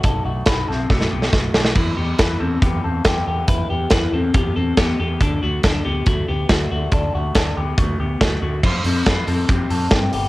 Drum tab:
CC |----------------|x---------------|----------------|----------------|
HH |x---x-----------|----x---x---x---|x---x---x---x---|x---x---x---x---|
SD |----o---oo-oo-oo|----o-------o---|----o-------o---|----o-------o---|
BD |o---o---o---o---|o---o---o---o---|o---o---o---o---|o---o---o---o---|

CC |----------------|x---------------|
HH |x---x---x---x---|--o-x-o-x-o-x-o-|
SD |----o-------o---|----o-------o---|
BD |o---o---o---o---|o---o---o---o---|